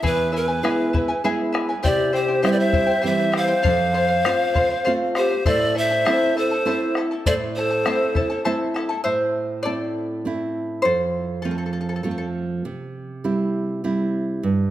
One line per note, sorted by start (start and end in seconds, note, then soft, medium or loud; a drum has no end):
0.03 0.62 E2 medium
0.03 0.31 E4 medium
0.03 0.34 G#4 medium
0.03 0.32 B4 medium
0.03 0.33 B4 medium
0.03 0.31 E5 medium
0.03 0.33 G#5 medium
0.03 bombo rim soft
0.03 bombo low medium
0.32 0.48 E4 medium
0.32 0.48 B4 medium
0.32 0.48 E5 medium
0.32 0.47 G#5 medium
0.36 1.22 B4 medium
0.48 0.63 E4 soft
0.48 0.63 B4 soft
0.48 0.63 G#5 soft
0.63 1.12 G#3 soft
0.63 1.11 B3 soft
0.63 1.12 E4 soft
0.63 0.92 E4 medium
0.63 0.94 G#4 medium
0.63 0.93 B4 medium
0.63 0.92 E5 medium
0.63 0.93 G#5 medium
0.63 bombo rim medium
0.93 1.09 E4 medium
0.93 1.08 B4 medium
0.93 1.09 E5 medium
0.93 1.07 G#5 medium
0.93 bombo low medium
1.08 1.23 E4 soft
1.08 1.23 B4 soft
1.08 1.24 G#5 medium
1.08 bombo rim soft
1.24 1.73 G#3 soft
1.24 1.73 B3 soft
1.24 1.52 E4 medium
1.24 1.73 E4 soft
1.24 1.54 G#4 medium
1.24 1.52 B4 medium
1.24 1.51 E5 medium
1.24 1.53 G#5 medium
1.39 bombo rim soft
1.52 1.69 E4 medium
1.52 1.69 B4 medium
1.52 1.68 E5 medium
1.52 1.68 G#5 medium
1.52 bombo rim medium
1.69 1.82 E4 soft
1.69 1.83 B4 soft
1.69 1.84 G#5 soft
1.83 2.42 C3 medium
1.83 2.12 E4 medium
1.83 2.14 G4 medium
1.83 2.13 G4 medium
1.83 2.12 C5 medium
1.83 2.13 D5 medium
1.83 2.11 E5 medium
1.83 2.13 G5 medium
1.83 bombo low medium
2.13 2.27 E4 medium
2.13 2.43 G4 medium
2.13 2.27 C5 medium
2.13 2.43 C5 medium
2.13 2.29 E5 medium
2.13 2.27 G5 medium
2.13 bombo rim soft
2.28 2.42 E4 soft
2.28 2.42 C5 soft
2.28 2.43 G5 soft
2.42 2.92 G3 soft
2.42 2.92 C4 soft
2.42 2.72 E4 medium
2.42 2.93 E4 soft
2.42 2.74 G4 medium
2.42 2.73 C5 medium
2.42 2.54 C5 medium
2.42 2.71 E5 medium
2.42 2.53 E5 medium
2.42 2.73 G5 medium
2.42 bombo rim medium
2.52 2.61 B4 medium
2.52 2.61 D5 medium
2.59 3.05 C5 medium
2.59 3.05 E5 medium
2.73 2.86 E4 medium
2.73 2.86 C5 medium
2.73 2.89 E5 medium
2.73 2.85 G5 medium
2.73 bombo low medium
2.87 3.01 E4 soft
2.87 3.01 C5 soft
2.87 3.02 G5 medium
3.02 3.53 E3 medium
3.02 3.52 G3 soft
3.02 3.52 C4 soft
3.02 3.31 E4 medium
3.02 3.33 G4 medium
3.02 3.31 C5 medium
3.02 3.31 E5 medium
3.02 3.32 G5 medium
3.02 bombo rim soft
3.06 3.35 C5 medium
3.06 3.38 E5 medium
3.32 3.48 E4 medium
3.32 3.47 C5 medium
3.32 4.92 C5 medium
3.32 3.48 E5 medium
3.32 3.46 G5 medium
3.32 bombo rim medium
3.37 4.93 F5 loud
3.48 3.64 E4 soft
3.48 3.62 C5 soft
3.48 3.63 G5 soft
3.48 bombo rim soft
3.63 4.24 F2 medium
3.63 3.93 A4 medium
3.63 3.93 C5 medium
3.63 3.94 F5 medium
3.63 bombo low medium
3.94 4.10 A4 medium
3.94 4.08 C5 medium
3.94 4.07 F5 medium
3.94 bombo rim soft
4.08 4.24 C5 soft
4.08 4.24 F5 medium
4.25 4.73 A3 soft
4.25 4.74 C4 soft
4.25 4.74 F4 medium
4.25 4.53 A4 medium
4.25 4.54 C5 medium
4.25 4.55 F5 loud
4.25 bombo rim medium
4.40 bombo rim soft
4.54 4.70 A4 medium
4.54 4.70 C5 medium
4.54 4.69 F5 medium
4.54 bombo low medium
4.70 4.84 C5 soft
4.70 4.84 F5 medium
4.84 5.34 A3 soft
4.84 5.34 C4 soft
4.84 5.35 F4 medium
4.84 5.14 A4 medium
4.84 5.15 C5 medium
4.84 5.15 F5 medium
4.84 bombo rim soft
5.15 5.47 G4 medium
5.15 5.30 A4 medium
5.15 5.30 C5 medium
5.15 5.48 C5 medium
5.15 5.29 F5 medium
5.15 bombo rim medium
5.30 5.44 C5 soft
5.30 5.45 F5 soft
5.30 bombo rim soft
5.45 6.04 A2 medium
5.45 5.75 E4 medium
5.45 5.79 A4 medium
5.45 5.74 A4 loud
5.45 5.75 C5 medium
5.45 5.79 D5 loud
5.45 5.74 E5 medium
5.45 5.75 A5 loud
5.45 bombo low medium
5.75 5.91 E4 medium
5.75 5.90 A4 medium
5.75 6.39 C5 medium
5.75 5.90 E5 medium
5.75 6.40 E5 medium
5.75 5.90 A5 medium
5.75 bombo rim soft
5.91 6.05 E4 soft
5.91 6.05 A4 soft
5.91 6.05 A5 medium
6.05 6.54 A3 soft
6.05 6.54 C4 soft
6.05 6.36 E4 medium
6.05 6.55 E4 medium
6.05 6.36 A4 medium
6.05 6.35 C5 medium
6.05 6.35 E5 medium
6.05 6.36 A5 medium
6.05 bombo rim medium
6.22 bombo rim soft
6.37 6.51 E4 medium
6.37 6.99 A4 medium
6.37 6.51 A4 medium
6.37 7.00 C5 medium
6.37 6.51 E5 medium
6.37 6.50 A5 medium
6.51 6.66 E4 soft
6.51 6.66 A4 soft
6.51 6.66 A5 medium
6.65 7.13 A3 soft
6.65 7.13 C4 soft
6.65 7.14 E4 medium
6.65 6.96 E4 medium
6.65 6.96 A4 medium
6.65 6.96 C5 medium
6.65 6.95 E5 medium
6.65 6.96 A5 medium
6.65 bombo rim soft
6.95 7.11 E4 medium
6.95 7.11 A4 medium
6.95 7.11 E5 medium
6.95 7.10 A5 medium
6.95 bombo rim medium
7.11 7.25 E4 soft
7.11 7.26 A4 soft
7.11 7.26 A5 soft
7.11 bombo rim soft
7.26 7.84 A2 medium
7.26 7.56 E4 medium
7.26 7.34 A4 medium
7.26 7.56 A4 medium
7.26 7.56 C5 medium
7.26 7.33 D5 loud
7.26 7.56 E5 medium
7.26 7.56 A5 medium
7.26 bombo rim soft
7.26 bombo low medium
7.56 7.71 E4 medium
7.56 8.42 A4 medium
7.56 7.70 A4 medium
7.56 8.41 C5 medium
7.56 7.71 E5 medium
7.56 7.69 A5 medium
7.56 bombo rim soft
7.71 7.85 E4 soft
7.71 7.86 A4 soft
7.71 7.85 A5 medium
7.86 8.34 A3 soft
7.86 8.34 C4 soft
7.86 8.15 E4 medium
7.86 8.34 E4 soft
7.86 8.15 A4 medium
7.86 8.16 C5 medium
7.86 8.14 E5 medium
7.86 8.15 A5 medium
7.86 bombo rim medium
8.15 8.31 E4 medium
8.15 8.30 A4 medium
8.15 8.30 E5 medium
8.15 8.29 A5 medium
8.15 bombo low medium
8.30 8.44 E4 soft
8.30 8.44 A4 soft
8.30 8.44 A5 medium
8.45 8.94 A3 soft
8.45 8.94 C4 soft
8.45 8.74 E4 medium
8.45 8.94 E4 medium
8.45 8.75 A4 medium
8.45 8.75 C5 medium
8.45 8.73 E5 medium
8.45 8.75 A5 loud
8.62 bombo rim soft
8.74 8.90 E4 medium
8.74 8.89 A4 medium
8.74 8.90 E5 medium
8.74 8.88 A5 medium
8.74 bombo rim medium
8.89 9.06 E4 soft
8.89 9.04 A4 soft
8.89 9.03 A5 medium
9.04 10.81 A2 medium
9.04 9.61 C5 medium
9.04 9.66 E5 medium
9.63 10.23 A3 soft
9.63 10.24 C4 soft
9.63 10.24 E4 soft
9.63 10.81 A4 medium
9.63 10.82 D5 medium
10.25 10.83 A3 soft
10.25 10.84 C4 soft
10.25 10.84 E4 soft
10.82 12.61 F2 medium
10.82 11.41 A4 medium
10.82 11.45 C5 medium
11.42 12.03 F3 soft
11.42 12.03 A3 soft
11.42 12.03 C4 soft
11.42 11.52 F4 soft
11.42 11.50 A4 medium
11.51 11.57 A4 soft
11.58 11.65 A4 soft
11.66 11.72 A4 soft
11.73 11.79 A4 soft
11.81 11.88 A4 soft
11.89 11.95 A4 soft
11.96 12.02 A4 soft
12.03 12.63 F3 soft
12.03 12.63 A3 soft
12.03 12.63 C4 soft
12.03 12.10 A4 soft
12.11 12.17 A4 soft
12.18 12.26 A4 soft
12.65 14.40 C3 medium
13.24 13.82 G3 soft
13.24 13.83 C4 soft
13.24 13.83 E4 soft
13.84 14.42 G3 soft
13.84 14.42 C4 soft
13.84 14.42 E4 soft
14.43 14.71 G2 medium